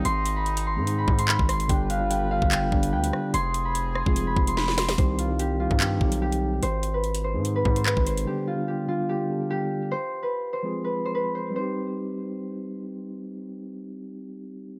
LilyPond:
<<
  \new Staff \with { instrumentName = "Harp" } { \time 4/4 \key c \minor \tempo 4 = 146 c'''8. b''16 r8 c'''8. b''8 c'''16 b''8 c'''8 | g''8 f''8 g''8 f''8 g''4 g''4 | c'''8. b''16 r8 c'''8. b''8 c'''16 b''8 c'''8 | c''8 f'8 g'8 f'8 g'4 g'4 |
c''8. b'16 r8 c''8. b'8 c''16 b'8 c''8 | g'8 f'8 g'8 f'8 g'4 g'4 | c''8. b'16 r8 c''8. b'8 c''16 b'8 c''8 | c''2. r4 |
r1 | }
  \new Staff \with { instrumentName = "Tine electric piano" } { \time 4/4 \key c \minor r4. r16 <ees aes c' ees' aes'>4. r8. | <d g b d' g'>8 r16 <d g b d' f'>8 r16 <d g b d' f'>8. r16 <d g b d' g'>4. | r4. r16 <f aes c' f' aes'>4. r8. | <ees g c' ees' g'>8 r16 <ees g c' ees' f'>8 r16 <ees g c' ees' g'>8. r16 <ees g c' ees' g'>4. |
r4. r16 <ees aes c' ees' aes'>4. r8. | <d g b d' g'>8 r16 <d g b d' f'>8 r16 <d g b d' f'>8. r16 <d g b d' g'>4. | r4. r16 <f aes c' f' aes'>4. r8. | <g c' ees' g'>1~ |
<g c' ees' g'>1 | }
  \new Staff \with { instrumentName = "Woodwind section" } { \time 4/4 \key c \minor <aes c' ees'>1 | <g d' b'>1 | <f c' aes'>1 | r1 |
r1 | r1 | r1 | r1 |
r1 | }
  \new Staff \with { instrumentName = "808-style bass" } { \clef bass \time 4/4 \key c \minor aes,,4.~ aes,,16 aes,8. aes,8. aes,,8. | g,,4.~ g,,16 g,,8. g,,8 d,8 r8 | f,,4.~ f,,16 f,,8. f,,4. | c,4.~ c,16 g,8. b,,4. |
aes,,4.~ aes,,16 aes,8. aes,8. aes,,8. | r1 | r1 | r1 |
r1 | }
  \new DrumStaff \with { instrumentName = "Drums" } \drummode { \time 4/4 hh8 hh8 hh16 hh8. hh8 bd16 hh16 hc16 bd16 <hh ss>16 hh16 | <hh bd>8 hh8 hh8. bd16 <hc hh>8 bd16 hh16 r16 hh16 ss8 | hh8 hh8 hh8 ss16 bd16 hh8 bd16 hh16 sn16 sn16 <hh sn>16 <hh sn>16 | <hh bd>8 hh8 hh8. bd16 <hc hh>8 bd16 hh16 r16 hh8. |
hh8 hh8 hh16 hh8. hh8 bd16 hh16 hc16 bd16 hh16 hh16 | r4 r4 r4 r4 | r4 r4 r4 r4 | r4 r4 r4 r4 |
r4 r4 r4 r4 | }
>>